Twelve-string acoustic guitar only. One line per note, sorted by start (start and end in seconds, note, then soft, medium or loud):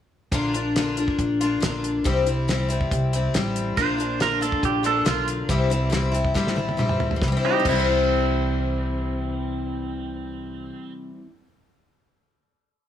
0.32 0.54 A#2 medium
0.32 0.54 D3 medium
0.32 0.54 A#3 medium
0.32 0.55 D4 medium
0.32 0.53 F4 medium
0.54 0.76 A#3 soft
0.54 0.76 D4 medium
0.54 0.75 F4 medium
0.76 0.97 D3 medium
0.76 0.98 A#3 medium
0.76 0.98 D4 medium
0.76 0.96 F4 medium
0.97 1.41 D4 soft
0.97 1.39 F4 soft
1.02 1.42 A#3 soft
1.41 1.61 A#3 soft
1.41 1.62 D4 medium
1.41 1.62 F4 medium
1.60 2.04 D3 medium
1.60 2.05 A#3 medium
1.60 2.06 D4 medium
1.60 2.06 F4 medium
2.04 2.26 C3 medium
2.04 2.27 E3 medium
2.04 2.27 G3 medium
2.04 2.27 C4 medium
2.04 2.25 E4 medium
2.26 2.48 G3 soft
2.26 2.49 C4 soft
2.26 2.48 E4 medium
2.48 2.70 E3 medium
2.48 2.70 G3 medium
2.48 2.69 C4 medium
2.48 2.67 E4 medium
2.69 3.14 G3 soft
2.69 3.13 C4 soft
2.69 3.12 E4 medium
3.13 3.34 G3 medium
3.13 3.35 C4 medium
3.13 3.34 E4 medium
3.34 3.77 E3 medium
3.34 3.78 G3 medium
3.34 3.78 C4 medium
3.34 3.79 E4 medium
3.77 3.99 A#2 medium
3.77 3.99 D3 medium
3.77 4.00 A#3 medium
3.77 3.99 D4 medium
3.77 3.97 F4 medium
3.98 4.20 A#3 soft
3.98 4.21 D4 soft
3.98 4.20 F4 medium
4.20 4.42 D3 medium
4.20 4.43 A#3 medium
4.20 4.42 D4 medium
4.20 4.40 F4 medium
4.41 4.85 A#3 soft
4.41 4.84 D4 medium
4.41 4.82 F4 medium
4.83 5.05 A#3 soft
4.83 5.06 D4 medium
4.83 5.06 F4 medium
5.05 5.49 D3 medium
5.05 5.49 A#3 medium
5.05 5.50 D4 medium
5.05 5.50 F4 medium
5.49 5.71 C3 medium
5.49 5.71 E3 medium
5.49 5.72 G3 medium
5.49 5.71 C4 medium
5.49 5.69 E4 medium
5.70 5.90 G3 soft
5.70 5.91 C4 medium
5.70 5.92 E4 medium
5.90 6.13 E3 medium
5.90 6.13 G3 medium
5.90 6.13 C4 medium
5.90 6.10 E4 medium
6.12 6.35 G3 soft
6.12 6.35 C4 soft
6.12 6.34 E4 medium
6.34 6.57 A2 medium
6.34 6.57 E3 medium
6.34 6.57 G3 medium
6.34 6.57 C4 medium
6.34 6.55 E4 medium
6.56 6.77 G3 soft
6.56 6.78 C4 medium
6.56 6.78 E4 medium
6.77 7.21 E3 medium
6.77 7.22 G3 medium
6.77 7.22 C4 medium
6.77 7.22 E4 medium
7.16 7.59 C3 medium
7.23 7.65 E3 medium
7.28 7.70 G3 medium
7.32 7.75 C4 medium
7.37 7.79 E4 medium
7.60 11.10 C3 medium
7.65 11.15 E3 medium
7.71 11.21 G3 medium
7.76 11.26 C4 medium
7.80 11.30 E4 medium